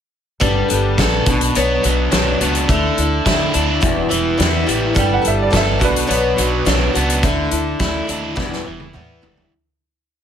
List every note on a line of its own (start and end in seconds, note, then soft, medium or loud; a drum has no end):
0.40 0.65 G1 medium
0.40 0.69 G3 medium
0.40 0.69 B3 medium
0.40 0.68 D4 medium
0.40 0.67 A4 medium
0.40 kick loud
0.40 closed hi-hat medium
0.69 0.94 G1 medium
0.69 0.98 B3 soft
0.69 0.98 D4 medium
0.69 0.98 A4 medium
0.69 closed hi-hat medium
0.98 1.22 A#1 medium
0.98 1.27 G3 medium
0.98 1.27 B3 medium
0.98 1.26 D4 medium
0.98 1.26 A4 medium
0.98 kick medium
0.98 snare loud
0.98 closed hi-hat medium
1.26 1.50 B1 medium
1.26 2.70 B2 medium
1.26 1.55 B3 soft
1.26 1.55 D4 medium
1.26 1.55 F#4 medium
1.26 kick loud
1.26 closed hi-hat medium
1.41 closed hi-hat medium
1.55 1.79 B1 medium
1.55 1.84 B2 medium
1.55 1.84 F#3 medium
1.55 1.84 B3 medium
1.55 1.83 D4 medium
1.55 1.82 F#4 medium
1.55 closed hi-hat medium
1.83 2.08 B1 medium
1.83 2.69 F#3 medium
1.83 2.10 B3 soft
1.83 2.11 D4 soft
1.83 2.12 F#4 medium
1.83 closed hi-hat medium
2.11 2.36 B1 medium
2.11 2.40 F#3 medium
2.11 2.40 B3 medium
2.11 2.40 D4 medium
2.11 2.39 F#4 medium
2.11 snare loud
2.11 closed hi-hat medium
2.40 2.64 C#2 medium
2.40 2.69 B3 medium
2.40 2.69 D4 medium
2.40 2.69 F#4 medium
2.40 closed hi-hat medium
2.55 closed hi-hat medium
2.69 2.92 D2 medium
2.69 2.98 D3 medium
2.69 2.98 A3 medium
2.69 2.97 D4 medium
2.69 2.96 E4 medium
2.69 kick loud
2.69 closed hi-hat medium
2.97 3.21 D2 medium
2.97 3.25 A3 soft
2.97 3.26 D4 soft
2.97 3.26 E4 medium
2.97 closed hi-hat medium
3.25 3.49 D2 medium
3.25 3.54 D3 medium
3.25 3.54 A3 medium
3.25 3.52 D4 medium
3.25 3.52 E4 medium
3.25 kick medium
3.25 snare loud
3.25 closed hi-hat medium
3.53 3.78 D2 medium
3.53 3.81 A3 soft
3.53 3.81 D4 medium
3.53 3.81 E4 medium
3.53 closed hi-hat medium
3.81 4.06 E1 medium
3.81 4.10 E2 medium
3.81 4.11 B2 medium
3.81 4.10 E3 medium
3.81 4.10 G3 medium
3.81 4.09 B3 medium
3.81 4.08 E4 medium
3.81 kick loud
3.81 closed hi-hat medium
4.09 4.34 E1 medium
4.09 4.36 E3 soft
4.09 4.37 G3 soft
4.09 4.37 B3 soft
4.09 4.38 E4 medium
4.09 closed hi-hat medium
4.38 4.63 E2 medium
4.38 4.67 E3 medium
4.38 4.66 G3 medium
4.38 4.66 B3 medium
4.38 4.65 E4 medium
4.38 snare loud
4.38 closed hi-hat medium
4.66 4.91 A1 medium
4.66 4.94 E3 soft
4.66 4.93 G3 medium
4.66 4.94 B3 medium
4.66 4.95 E4 medium
4.66 closed hi-hat medium
4.94 5.20 G1 medium
4.94 5.24 G3 medium
4.94 5.22 B3 medium
4.94 5.21 D4 medium
4.94 5.20 A4 medium
4.94 kick loud
4.94 closed hi-hat medium
4.99 5.11 G5 medium
5.14 5.26 F#5 medium
5.22 5.48 G1 medium
5.22 5.49 B3 soft
5.22 5.51 D4 medium
5.22 5.51 A4 medium
5.22 closed hi-hat medium
5.28 5.40 E5 medium
5.42 5.54 D5 medium
5.50 5.76 G1 medium
5.50 5.80 G3 medium
5.50 5.80 B3 medium
5.50 5.78 D4 medium
5.50 5.78 A4 medium
5.50 kick medium
5.50 snare loud
5.50 closed hi-hat medium
5.57 5.83 E5 medium
5.79 6.05 B1 medium
5.79 7.23 B2 medium
5.79 6.06 B3 medium
5.79 6.06 D4 medium
5.79 6.07 F#4 medium
5.79 kick loud
5.79 closed hi-hat medium
5.84 6.93 D4 medium
5.84 6.93 B4 medium
5.96 closed hi-hat medium
6.07 6.33 B1 medium
6.07 6.37 B2 medium
6.07 6.37 F#3 medium
6.07 6.37 B3 medium
6.07 6.36 D4 medium
6.07 6.35 F#4 medium
6.07 closed hi-hat medium
6.36 6.62 B1 medium
6.36 7.23 F#3 medium
6.36 6.64 B3 soft
6.36 6.65 D4 soft
6.36 6.65 F#4 medium
6.36 closed hi-hat medium
6.65 6.90 B1 medium
6.65 6.94 F#3 medium
6.65 6.94 B3 medium
6.65 6.94 D4 medium
6.65 6.92 F#4 medium
6.65 snare loud
6.65 closed hi-hat medium
6.93 7.23 C#2 medium
6.93 7.23 B3 soft
6.93 7.23 D4 medium
6.93 7.23 F#4 medium
6.93 closed hi-hat medium
7.10 closed hi-hat medium
7.23 7.47 D2 medium
7.23 7.52 D3 medium
7.23 7.52 A3 medium
7.23 7.51 D4 medium
7.23 7.50 E4 medium
7.23 kick loud
7.23 closed hi-hat medium
7.51 7.75 D2 medium
7.51 7.79 A3 soft
7.51 7.79 D4 medium
7.51 7.80 E4 medium
7.51 closed hi-hat medium
7.79 8.04 D2 medium
7.79 8.09 D3 medium
7.79 8.08 A3 medium
7.79 8.07 D4 medium
7.79 8.06 E4 medium
7.79 kick medium
7.79 snare loud
7.79 closed hi-hat medium
8.07 8.32 D#2 medium
8.07 8.36 A3 soft
8.07 8.36 D4 medium
8.07 8.35 E4 medium
8.07 closed hi-hat medium
8.36 8.60 E1 medium
8.36 8.65 E2 medium
8.36 8.65 B2 medium
8.36 8.65 E3 medium
8.36 8.64 G3 medium
8.36 8.63 B3 medium
8.36 8.63 E4 medium
8.36 kick loud
8.36 snare medium
8.53 snare medium
8.64 8.90 E1 medium
8.64 8.92 E3 soft
8.64 8.93 G3 soft
8.64 8.94 B3 soft
8.64 8.93 E4 medium
8.80 high tom medium
8.93 9.18 E2 medium
8.93 9.22 E3 medium
8.93 9.22 G3 medium
8.93 9.21 B3 medium
8.93 9.21 E4 medium
8.93 mid tom medium
9.22 9.46 E1 medium
9.22 9.52 E3 medium
9.22 9.52 G3 medium
9.22 9.51 B3 medium
9.22 9.51 E4 medium
9.22 floor tom medium
9.37 floor tom medium